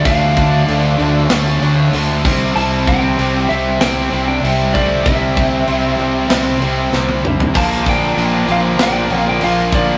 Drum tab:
CC |x-x-x-x-x-x-x-x-|x-x-x-x-x-x-x-x-|x-x-x-x-x-x-----|x-x-x-x-x-x-x-x-|
SD |--------o-------|--------o-------|--------o---o---|--------o-------|
T1 |----------------|----------------|-------------o--|----------------|
T2 |----------------|----------------|--------------o-|----------------|
FT |----------------|----------------|---------------o|----------------|
BD |o-o-----------o-|--o-----------o-|o-o-------------|o-o-----------o-|